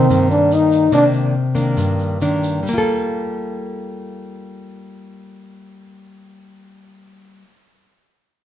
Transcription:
Already playing: C4
0.10 G2 D#3 A#3, shaker
0.31 D4, shaker
0.51 D#4, shaker
0.72 shaker
0.92 C3 D#3 A#3 D4, shaker
1.14 shaker
1.55 D#3 A#3 D4, shaker
1.77 G2, shaker
2.00 shaker
2.21 D#3 A#3 D4, shaker
2.44 shaker
2.63 G3, shaker
2.69 A#3
2.74 F4
2.78 A4

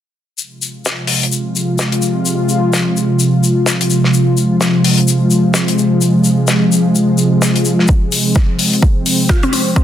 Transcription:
0.38 C3 F3 G#3 F4, shaker
0.62 shaker
0.85 snare, shaker
1.07 open hi-hat
1.23 closed hi-hat
1.32 shaker
1.56 shaker
1.79 snare, shaker
1.92 closed hi-hat
2.02 shaker
2.26 shaker
2.49 shaker
2.73 snare, shaker
2.97 shaker
3.20 shaker
3.44 shaker
3.66 snare, shaker
3.81 closed hi-hat
3.90 shaker
4.04 snare
4.14 shaker
4.37 shaker
4.61 snare, shaker
4.84 open hi-hat
4.98 closed hi-hat
5.08 shaker
5.31 shaker
5.54 snare, shaker
5.68 closed hi-hat
5.78 shaker
6.02 shaker
6.24 shaker
6.48 snare, shaker
6.72 shaker
6.95 shaker
7.18 shaker
7.42 snare, shaker
7.56 closed hi-hat
7.65 shaker
7.79 snare
7.88 C4, kick, shaker
8.12 open hi-hat, shaker
8.35 kick, snare, shaker
8.59 open hi-hat
8.73 closed hi-hat
8.83 kick, shaker
9.06 open hi-hat, shaker
9.29 F4, kick, snare, shaker
9.43 C4, closed hi-hat
9.53 C4, open hi-hat, shaker
9.76 C4, kick, shaker

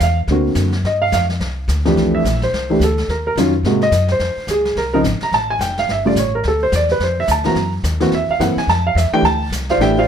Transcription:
0.00 E2 F5, snare, hi-hat pedal
0.27 D2 D3 A#3 C4, brush sweep, snare
0.32 F#4
0.55 F#2, snare, hi-hat pedal
0.73 snare
0.84 G2 D#5, brush sweep, snare
1.02 F5
1.12 F2 F5, snare, hi-hat pedal
1.29 snare
1.40 C2, brush sweep, snare
1.68 D2, snare, hi-hat pedal
1.85 F2 E3 A3 D4 G4, snare
1.96 C2, brush sweep, snare
2.15 E5
2.24 A#1, snare, hi-hat pedal
2.42 C5, snare
2.52 C2, brush sweep, snare
2.70 E3 A3 D4 G4
2.80 D2, snare, hi-hat pedal
2.84 A4
2.98 snare
3.08 D#2 A#4, brush sweep, snare
3.27 A#4
3.36 F2 D#3 F#3 C#4 F4, snare, hi-hat pedal
3.63 G#2 C3 G#3 A#3 F#4, brush sweep, snare
3.81 D#5, snare
3.91 F#2, snare, hi-hat pedal
4.08 C5, snare
4.19 F2, brush sweep, snare
4.36 muted upright bass stroke
4.47 C#2 G#4, snare, hi-hat pedal
4.65 snare
4.76 C2 A#4, brush sweep, snare
4.93 C#3 F3 C4 D#4 A#4
5.03 G#1, snare, hi-hat pedal
5.21 A#5, muted upright bass stroke, snare
5.31 A1 A5, brush sweep, snare
5.50 G#5
5.59 F1 G5, snare, hi-hat pedal
5.77 F5, snare
5.88 G1 E5, brush sweep, snare
6.05 C#3 G3 A3 F4 D5
6.15 A1, snare, hi-hat pedal
6.19 C#5
6.35 A#4
6.43 D2, brush sweep, snare
6.48 A4
6.63 C5
6.72 E2 D5, snare, hi-hat pedal
6.89 B4, snare
7.00 F2 C5, brush sweep, snare
7.20 E5
7.28 D2 A5, snare, hi-hat pedal
7.44 E3 A#3 C4 F#4 A#5, snare
7.55 F#2, brush sweep, snare
7.84 D#2, snare, hi-hat pedal
8.00 E3 A#3 C4 F#4, snare
8.11 E2 E5, brush sweep, snare
8.29 F5, muted upright bass stroke
8.39 F#2 E3 A#3 C4 E4 F#5, snare, hi-hat pedal
8.56 G#5, muted upright bass stroke, snare
8.67 F2 A5, brush sweep, snare
8.87 F5
8.95 E2 E5, snare, hi-hat pedal
9.12 E3 A3 D4 G4 G5, muted upright bass stroke
9.22 D2 A5, brush sweep, snare
9.50 C2, snare, hi-hat pedal
9.69 F4 C5 D5 F5, snare
9.78 A1 E3 A3 D4 G4 G5, brush sweep, snare
9.82 D5 E5
9.98 F4 C5 D5 F5

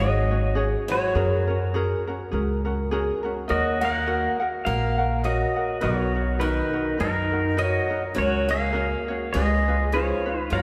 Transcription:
Already playing: G#1 C#4 F#4 G#4
0.00 F#3 F#4 C#5 D#5
0.31 C#4 F#4 C#5
0.55 C#4 F#4 G#4 C#5
0.88 F#3 C#4 F#4 C#5
0.93 F#4
1.15 F#2 C#4 F#4 G#4 A#4
1.47 C#4 F#4 A#4
1.74 C#4 F#4 G#4 A#4
2.07 C#4 F#4 A#4
2.31 C#2 C#4 F#4 G#4 A#4
2.65 C#4 F#4 A#4
2.91 C#4 F#4 G#4 A#4
3.23 C#4 F#4 A#4
3.48 D#2 F#3 F#4 A#4 D#5 F#5
3.81 A#3 F#4 A#4 F#5
4.06 F#4 A#4 D#5 F#5
4.40 F#4 A#4 F#5
4.65 A#1 A#3 F#4 A#4 D#5 F5 F#5
4.98 F#4 A#4 F#5
5.24 F#3 F#4 A#4 D#5 F#5
5.56 F#4 A#4 F#5
5.81 B1 F#3 D#4 F#4 A#4 B4 C#5
5.85 F#4
6.15 D#4 F#4 A#4
6.39 D#3 D#4 F#4 A#4 B4
6.73 D#4 F#4 A#4
6.97 F#2 D#3 D#4 F#4 A#4 B4
7.03 D#4
7.31 D#4 F#4 A#4
7.57 F#3 D#4 F#4 A#4 B4 D#5
7.62 F#4
7.90 D#4 F#4 A#4
8.15 C#2 F#3 C#4 F#4 A#4 C#5
8.21 F#4
8.48 A#3 C#4 F#4 C#5 F5
8.54 G#4
8.73 C#4 F#4 A#4 C#5
9.08 C#4 F#4 C#5
9.33 C#2 G#3 C#4 F4 G#4 B4 D#5
9.68 C#4 F4 B4
9.92 F3 C#4 F4 G#4 B4 C#5
9.96 F4
10.26 C#4 F4 B4
10.35 D#3
10.41 B4
10.50 F#2 A#3 F4 F#4 A#4 C#5 F#5
10.55 A#4

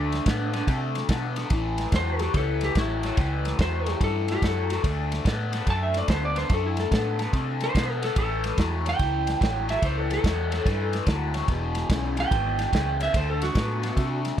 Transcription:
Already playing: D2 D3 A3 D4
0.12 snare, ride
0.26 A2 D3 B3, kick, snare, ride
0.53 D3 B3, snare, ride
0.67 C3 D3 A3, kick, snare, ride
0.95 snare, ride
1.09 B2 D3 B3, kick, snare, ride
1.36 D3 B3, snare, ride
1.50 A1 A2 E3, kick, snare, ride
1.78 snare, ride
1.92 E2 A2 F#3 C5, kick, snare, ride
2.19 A2 F#3 G4, snare, ride
2.34 C#2 A2 E3 A4, kick, snare, ride
2.61 G4, snare, ride
2.75 A1 A2 F#3 E4, kick, snare, ride
3.03 A2 F#3, snare, ride
3.17 C#2 A2 E3, kick, snare, ride
3.45 snare, ride
3.59 E2 A2 F#3 C5, kick, snare, ride
3.86 A2 F#3 G4, snare, ride
4.00 G2 A2 E3 A4, kick, snare, ride
4.28 G4, snare, ride
4.41 F#2 A2 F#3 A4, kick, snare, ride
4.69 A2 F#3, snare, ride
4.83 D2 D3 A3, kick, snare, ride
5.12 snare, ride
5.25 A2 D3 B3, kick, snare, ride
5.52 D3 B3, snare, ride
5.66 F#2 D3 A3 A5, kick, snare, ride
5.83 E5
5.94 D5, snare, ride
6.08 D2 D3 B3 C5, kick, snare, ride
6.25 D5
6.35 D3 B3 C5, snare, ride
6.50 F#2 D3 A3, kick, snare, ride
6.54 A4
6.66 E4
6.77 A4, snare, ride
6.91 A2 D3 B3 A4, kick, snare, ride
7.19 D3 B3, snare, ride
7.33 C3 D3 A3, kick, snare, ride
7.61 C5, snare, ride
7.75 B2 D3 B3, kick, snare, ride
7.92 A4
8.02 D3 B3 A4, snare, ride
8.16 A1 A2 E3 A4, kick, snare, ride
8.44 snare, ride
8.58 E2 A2 F#3, kick, snare, ride
8.85 A2 F#3, snare, ride
8.89 G5
8.99 C#2 A2 E3, kick, snare, ride
9.27 snare, ride
9.40 A1 A2 F#3, kick, snare, ride
9.68 A2 F#3 E5, snare, ride
9.82 C#2 A2 E3 C5, kick, snare, ride
9.98 A4
10.11 A4, snare, ride
10.23 E2 A2 F#3, kick, snare, ride
10.50 A2 F#3, snare, ride
10.64 G2 A2 E3, kick, snare, ride
10.93 snare, ride
11.06 D2 A2 F#3, kick, snare, ride
11.34 A2 F#3, snare, ride
11.48 E1 E2 B2, kick, snare, ride
11.75 snare, ride
11.90 B1 E2 C#3, kick, snare, ride
12.17 E2 C#3 G5, snare, ride
12.31 G#1 E2 B2, kick, snare, ride
12.59 snare, ride
12.72 C#2 E2 C#3, kick, snare, ride
13.00 E2 C#3 E5, snare, ride
13.14 D2 D3 A3 C5, kick, snare, ride
13.30 A4
13.42 F#4, snare, ride
13.55 A2 D3 B3, kick, snare, ride
13.81 D3 B3, snare, ride
13.96 C3 D3 A3, kick, snare, ride
14.25 snare, ride

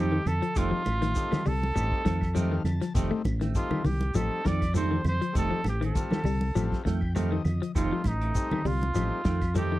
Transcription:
Already playing: F2 D#3 G3 A3 C4 D#4
0.00 G4
0.12 D#3
0.25 F2 A4, muted clean electric guitar stroke, closed hi-hat, low conga, claves, shekere
0.42 F3, muted clean electric guitar stroke, closed hi-hat
0.55 F1 D#3 G3 A3 C4 D#4 F4, kick, closed hi-hat, shekere
0.71 F3, muted clean electric guitar stroke
0.85 A1, closed hi-hat, high conga, claves, shekere
1.01 D#3 A3 C4, snare, closed hi-hat
1.15 G3 A3 C4 D#4, muted clean electric guitar stroke, kick, snare, closed hi-hat, shekere
1.31 D#3, muted clean electric guitar stroke, snare, high conga, low conga, claves
1.46 C2 G3 A4, open hi-hat, low conga, shekere
1.62 muted clean electric guitar stroke, high conga
1.75 A1 G3 A3 C4 D#4, muted clean electric guitar stroke, closed hi-hat, claves, shekere
1.92 muted clean electric guitar stroke, kick
2.05 F2 D#3 A3 C4, kick, snare, closed hi-hat, shekere
2.21 muted clean electric guitar stroke, kick, snare, claves
2.34 D#3 F3 G3 A3 C4 D#4 F5, closed hi-hat, high conga, shekere
2.52 D#3
2.64 F2 A5, muted clean electric guitar stroke, snare, closed hi-hat, low conga, claves, shekere
2.81 F3, muted clean electric guitar stroke, snare, closed hi-hat
2.94 F1 D#3 G3 A3 C4 D#4, kick, closed hi-hat, high conga, shekere
3.11 A3, muted clean electric guitar stroke
3.25 A1, kick, closed hi-hat, high conga, claves, shekere
3.41 D#3 A3 C4, snare, closed hi-hat
3.54 G3 A3 C4 D#4 F4, muted clean electric guitar stroke, kick, closed hi-hat, high conga, shekere
3.71 D#3, muted clean electric guitar stroke, high conga, low conga, claves
3.84 C2 D#3 G4, open hi-hat, high conga, low conga, shekere
4.01 muted clean electric guitar stroke, closed hi-hat, high conga
4.14 A1 F3 G3 A3 C4 D#4 A4, closed hi-hat, high conga, claves, shekere
4.32 muted clean electric guitar stroke
4.45 F2 D#3 A3 C4 D5, kick, snare, closed hi-hat, shekere
4.61 muted clean electric guitar stroke, kick, snare, closed hi-hat, claves
4.74 D#3 F3 G3 A3 C4 D4 C5, closed hi-hat, high conga, shekere
4.91 D#3
5.05 F2 C5, muted clean electric guitar stroke, closed hi-hat, high conga, low conga, claves, shekere
5.21 F3, muted clean electric guitar stroke, closed hi-hat
5.33 F1 D#3 G3 A3 C4 D#4, kick, closed hi-hat, high conga, shekere
5.38 A4
5.51 F3, muted clean electric guitar stroke
5.64 A1, snare, closed hi-hat, high conga, claves, shekere
5.69 G4
5.81 D#3 A3 C4, closed hi-hat
5.86 A4
5.95 G3 A3 C4 F4, muted clean electric guitar stroke, kick, closed hi-hat, high conga, shekere
6.11 D#3, muted clean electric guitar stroke, snare, high conga, claves
6.24 C2 G3, open hi-hat, low conga, shekere
6.41 muted clean electric guitar stroke, high conga
6.55 A1 F3 G3 A3 C4 F4, closed hi-hat, claves, shekere
6.71 muted clean electric guitar stroke, kick, snare
6.85 F2 D#3 A3 G5, muted clean electric guitar stroke, kick, snare, closed hi-hat, shekere
7.01 muted clean electric guitar stroke, kick, claves
7.15 D#3 G3 A3 C4 D#4 F5, muted clean electric guitar stroke, closed hi-hat, high conga, shekere
7.32 D#3 D#5
7.45 F2, muted clean electric guitar stroke, closed hi-hat, low conga, claves, shekere
7.62 F3, muted clean electric guitar stroke, closed hi-hat
7.75 F1 D#3 G3 A3 C4 D#4 F4, kick, closed hi-hat, high conga, shekere
7.92 F3, muted clean electric guitar stroke
8.04 A1 D#4, kick, snare, closed hi-hat, high conga, claves, shekere
8.21 A3 C4, closed hi-hat
8.35 G3 A3 C4 D#4, muted clean electric guitar stroke, kick, closed hi-hat, high conga, shekere
8.51 D#3, muted clean electric guitar stroke, high conga, low conga, claves
8.65 C2 G3 F4, open hi-hat, high conga, low conga, shekere
8.81 muted clean electric guitar stroke, closed hi-hat, high conga
8.94 A1 F3 G3 A3 C4 D#4, closed hi-hat, high conga, claves, shekere
9.12 muted clean electric guitar stroke
9.25 F2 D#3 A3 C4, muted clean electric guitar stroke, kick, snare, closed hi-hat, shekere
9.41 muted clean electric guitar stroke, kick, snare, closed hi-hat, claves
9.54 D#3 F3 G3 A3 C4 D#4 G4, closed hi-hat, high conga, shekere
9.72 D#3

